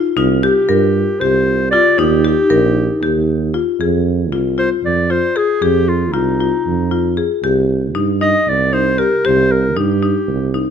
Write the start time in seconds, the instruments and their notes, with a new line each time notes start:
Already playing: vibraphone D#4, marimba F4
0.17 tuba C2, marimba D#4, vibraphone F4
0.41 clarinet G4, marimba G4
0.69 tuba G2, marimba A#4
1.20 tuba C2, marimba G4, clarinet C5
1.71 marimba F4, clarinet D5
1.98 tuba D#2, vibraphone D#4, marimba D#4, clarinet G4
2.25 marimba G4
2.50 tuba A#1, marimba A#4
3.02 tuba D#2, marimba G4
3.54 marimba F4
3.79 tuba F2, marimba G#4
4.31 tuba C2, marimba F4
4.58 marimba F4, clarinet C5
4.84 tuba F2, clarinet D5
5.10 marimba F4, clarinet C5
5.36 marimba G#4, clarinet G#4
5.61 tuba F2, clarinet G4, marimba G#4
5.88 clarinet F4
6.13 tuba C2, clarinet D#4, marimba F4
6.40 marimba F4
6.66 tuba F2
6.91 marimba F4
7.17 marimba G#4
7.43 tuba C2, marimba G4
7.95 tuba G2, marimba D#4
8.21 marimba D#4, clarinet D#5
8.47 tuba C2, clarinet D5
8.73 marimba D#4, clarinet C5
8.98 marimba G4, clarinet A#4
9.25 tuba C2, marimba G4, clarinet C5
9.52 clarinet A#4
9.76 tuba G2, marimba D#4, clarinet G4
10.03 marimba D#4
10.28 tuba C2
10.54 marimba D#4